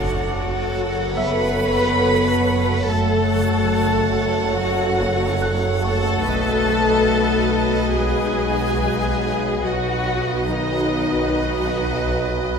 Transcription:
Already playing: F#1 F#2 F#3 F#4 A4 C#5 F#5, impact
1.17 B3 B4 E5 B5 E6
2.86 F#1 F#2 F#3 A3 A4 C#5 F#5 A5
4.56 F#3 F#4 F#5
5.42 F#6
5.83 A3 A4 A5 C#6
6.25 B1 F#3 F#4 B4 D#5 F#5
7.94 G#3 G#4 G#5
9.63 B1 F#3 F#4 B4 D#5 F#5
10.48 D#3 D#4 D#5

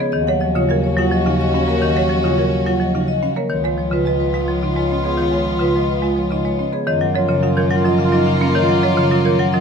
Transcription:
0.00 B3 G#4 C#5
0.12 D#2 D#3 C#4 F#4 D#5
0.27 F#3 C#5 F#5
0.41 F3 D#5
0.55 C#3 F4 C#5
0.69 F#3 A#4 F5
0.84 C#5
0.97 F#3 F4 F#5
1.11 F3 D#5
1.26 C#3 D#4 F5
1.41 D#5
1.54 C#4 F5
1.68 A#3 A#4 C#5
1.82 D#3 D#5
1.95 F#3 C#5 F#5
2.09 F3 D#5
2.23 C#3 F4 C#5
2.38 F#3 A#4 F5
2.52 C#5
2.66 F#3 F4 F#5
2.80 F3 D#5
2.94 C#3 D#4 F5
3.08 D#5
3.22 C#4 F5
3.36 A#3 A#4 C#5
3.50 C#2 D#3 B3 F4 C#5
3.64 G#3 C#5 F5
3.78 F3 C#5
3.92 C#3 F4 B4
4.05 G#3 B4 D#5
4.20 B4
4.34 G#3 F4 F5
4.48 F3 C#5
4.62 C#3 D#4 D#5
4.76 G#3 C#5
4.90 C#4 D#5
5.04 B3 G#4 C#5
5.17 D#3 C#5
5.32 G#3 C#5 F5
5.45 F3 C#5
5.60 C#3 F4 B4
5.74 G#3 B4 D#5
5.90 B4
6.02 G#3 F4 F5
6.16 F3 C#5
6.31 C#3 D#4 D#5
6.45 G#3 C#5
6.59 C#4 D#5
6.72 B3 G#4 C#5
6.86 F#2 D#3 A#3 F4 C#5 D#5
7.01 F#3 F#5
7.14 F3 F4 C#5 D#5
7.29 C#3 C#5
7.43 F#3 F4 F5
7.57 D#3 A#4 C#5
7.70 F#3 F#5
7.75 F4
7.85 F3 F4 D#5
7.98 C#3 F5
8.04 F4
8.12 F#3 D#4 D#5
8.26 C#3 F5
8.34 F4
8.41 A#3 C#4 A#4
8.55 D#3 C#5 D#5
8.63 F4
8.69 F#3 F#5
8.83 F3 C#5 D#5
8.93 F4
8.97 C#3 C#5
9.11 F#3 F4 F5
9.21 F4 C#5
9.25 D#3 A#4
9.39 F#3 F#5
9.51 F3 F4 D#5

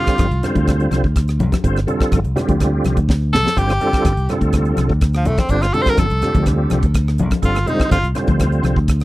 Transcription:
Already playing: D3 G3 C4 F4 G4
0.07 kick, cross-stick, closed hi-hat
0.18 G1, kick, cross-stick, closed hi-hat, high conga
0.31 C2, closed hi-hat
0.43 D3 G3 C4 F4 C5, cross-stick, closed hi-hat, low conga
0.55 D2, kick, closed hi-hat, high conga
0.67 kick, cross-stick, closed hi-hat, low conga
0.80 closed hi-hat
0.91 C2, cross-stick, closed hi-hat, high conga
1.04 D2, kick
1.16 kick, cross-stick, closed hi-hat
1.28 cross-stick, closed hi-hat
1.39 C2, closed hi-hat, high conga, low conga
1.52 kick, cross-stick, closed hi-hat, high conga
1.64 G1 D3 G3 C4 F4 C5, kick, closed hi-hat
1.76 cross-stick, closed hi-hat
1.87 D3 G3 C4 F4 A4, closed hi-hat, low conga
2.00 kick, cross-stick, closed hi-hat
2.12 G1, kick, cross-stick, closed hi-hat, high conga
2.24 C2, closed hi-hat
2.36 D3 G3 C4 F4 G4, cross-stick, closed hi-hat, low conga
2.48 D2, kick, closed hi-hat, high conga
2.60 kick, cross-stick, closed hi-hat, low conga
2.84 C2, cross-stick, closed hi-hat, high conga
2.97 D2, kick, closed hi-hat
3.09 kick, snare
3.33 C2 A4, snare, high conga, low conga
3.46 snare, high conga
3.56 G1 D3 G3 C4 F4 G4 C5, kick, closed hi-hat
3.69 cross-stick, closed hi-hat
3.81 D3 G3 C4 F4 A4, closed hi-hat, low conga
3.93 kick, cross-stick, closed hi-hat
4.05 G1, kick, cross-stick, closed hi-hat, high conga
4.17 C2, closed hi-hat
4.29 D3 G3 C4 F4 A4, muted fingered electric bass stroke, cross-stick, closed hi-hat, low conga
4.41 D2, kick, closed hi-hat
4.53 kick, cross-stick, closed hi-hat, low conga
4.65 closed hi-hat
4.77 C2, cross-stick, closed hi-hat, high conga
4.89 D2, kick
5.01 kick, cross-stick, closed hi-hat
5.13 F3, cross-stick, closed hi-hat
5.25 C2 A3, closed hi-hat, high conga, low conga
5.37 C4, kick, cross-stick, closed hi-hat, high conga
5.49 G1 D3 G3 C4 D4 F4 C5, kick, closed hi-hat
5.62 F4, cross-stick, closed hi-hat
5.74 D3 G3 C4 F4 A4, closed hi-hat, low conga
5.82 C5
5.86 A#4, kick, cross-stick, closed hi-hat
5.97 G1 A4, kick, cross-stick, closed hi-hat, high conga
6.10 C2, closed hi-hat
6.22 D3 G3 C4 F4 G4, muted fingered electric bass stroke, cross-stick, closed hi-hat, low conga
6.35 D2, kick, closed hi-hat, high conga
6.46 kick, cross-stick, closed hi-hat, low conga
6.70 C2, cross-stick, closed hi-hat, high conga
6.83 D2, kick, closed hi-hat
6.94 kick, cross-stick, closed hi-hat
7.08 cross-stick
7.18 C2, closed hi-hat, high conga, low conga
7.31 kick, cross-stick, closed hi-hat, high conga
7.42 G1 D3 G3 C4 F4 A4, kick, closed hi-hat
7.55 cross-stick, closed hi-hat
7.66 D3 G3 C4 D#4 F4 C5, closed hi-hat, low conga
7.80 kick, cross-stick, closed hi-hat
7.91 G1 F4, kick, cross-stick, closed hi-hat, high conga
8.03 C2, closed hi-hat
8.15 D3 G3 C4 F4 C5, cross-stick, closed hi-hat, low conga
8.27 D2, kick, closed hi-hat, high conga
8.40 kick, cross-stick, closed hi-hat, low conga
8.52 closed hi-hat
8.63 C2, cross-stick, closed hi-hat, high conga
8.76 D2, kick
8.88 kick, cross-stick, closed hi-hat
9.00 closed hi-hat

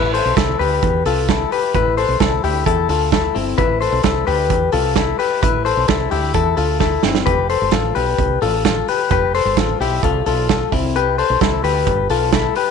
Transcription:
Already playing: A1 E4 B4
0.14 A4 C5, open hi-hat
0.25 B1
0.37 C2 E4 A4, kick, snare, closed hi-hat
0.59 D2 G4 B4, open hi-hat
0.83 E2, kick, closed hi-hat
1.06 C2 F4 A4, open hi-hat
1.29 E4 A4, kick, snare, closed hi-hat
1.52 G4 B4, open hi-hat
1.74 A1 E4 B4, kick, closed hi-hat
1.97 A4 C5, open hi-hat
2.09 B1
2.20 C2 E4 A4, kick, snare, closed hi-hat
2.44 D2 E4 G4, open hi-hat
2.66 E2 E4 A4, kick, closed hi-hat
2.89 D2 F4 A4, open hi-hat
3.12 E4 A4, kick, snare, closed hi-hat
3.35 G1 C4 E4, open hi-hat
3.58 A1 E4 B4, kick, closed hi-hat
3.81 A4 C5, open hi-hat
3.92 B1
4.03 C2 E4 A4, kick, snare, closed hi-hat
4.27 D2 G4 B4, open hi-hat
4.50 E2, kick, closed hi-hat
4.72 C2 F4 A4, open hi-hat
4.96 E4 A4, kick, snare, closed hi-hat
5.19 G4 B4, open hi-hat
5.43 A1 E4 B4, kick, closed hi-hat
5.65 A4 C5, open hi-hat
5.77 B1
5.88 C2 E4 A4, kick, snare, closed hi-hat
6.11 D2 E4 G4, open hi-hat
6.34 E2 E4 A4, kick, closed hi-hat
6.57 D2 F4 A4, open hi-hat
6.80 E4 A4, kick, snare
7.03 G1 C4 E4, snare
7.15 snare
7.26 F1 G4 B4, kick, closed hi-hat
7.50 A4 C5, open hi-hat
7.62 G1
7.71 A1 F4 A4, kick, snare, closed hi-hat
7.95 B1 G4 B4, open hi-hat
8.18 C2, kick, closed hi-hat
8.42 A1 F4 A4, open hi-hat
8.65 F4 A4, kick, snare, closed hi-hat
8.88 G4 B4, open hi-hat
9.11 F1 G4 B4, kick, closed hi-hat
9.35 A4 C5, open hi-hat
9.45 G1
9.57 A1 F4 A4, kick, snare, closed hi-hat
9.80 B1 E4 G4, open hi-hat
10.03 C2 F4 A4, kick, closed hi-hat
10.26 B1 F4 A4, open hi-hat
10.49 F4 A4, kick, snare, closed hi-hat
10.72 C2 C4 E4, kick, open hi-hat
10.96 G4 B4, closed hi-hat
11.18 A4 C5, open hi-hat
11.30 B1
11.41 C2 E4 A4, kick, snare, closed hi-hat
11.63 D2 G4 B4, open hi-hat
11.87 G1, kick, closed hi-hat
12.10 B1 F4 A4, open hi-hat
12.32 E4 A4, kick, snare, closed hi-hat
12.55 G4 B4, open hi-hat

